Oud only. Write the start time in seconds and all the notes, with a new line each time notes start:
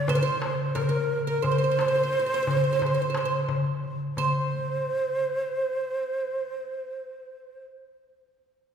0.09 C5
0.15 A#4
0.23 C5
0.75 A#4
0.89 A#4
1.27 A#4
1.42 C5
1.51 C5
1.58 C5
1.64 C5
1.71 C5
1.81 C5
1.88 C5
1.96 C5
2.03 C5
2.12 C5
2.19 C5
2.26 C5
2.34 C5
2.43 C5
2.51 C5
2.57 C5
2.64 C5
2.73 C5
2.79 C5
2.86 C5
2.94 C5
3.02 C5
3.10 C5
3.17 C5
3.25 C5
4.18 C5